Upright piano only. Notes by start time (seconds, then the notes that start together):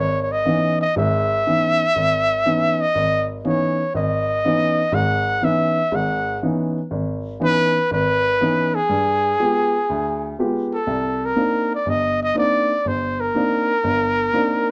Already playing: G#1
0.45 E3 B3 C#4 D#4
0.96 G#1 G#2
1.46 E3 B3 C#4 D#4
1.96 G#1
2.46 E3 B3 C#4 D#4
2.95 G#1
3.44 E3 B3 C#4 D#4
3.94 G#1
4.45 E3 B3 C#4 D#4
4.92 G#1 G#2
5.41 E3 B3 C#4 D#4
5.92 G#1 G#2
6.43 E3 B3 C#4 D#4
6.91 G#1
7.40 E3 B3 C#4 D#4
7.91 G#1
8.41 E3 B3 C#4 D#4
8.89 G2
9.40 G#3 B3 F4 G4
9.90 D2
10.39 G#3 B3 F4 G4
10.87 C2
11.36 A#3 C4 D4 D#4
11.86 G1
12.35 A#3 C4 D4 D#4
12.85 G1
13.35 A#3 C4 D4 D#4
13.84 G1
14.33 A#3 C4 D4 D#4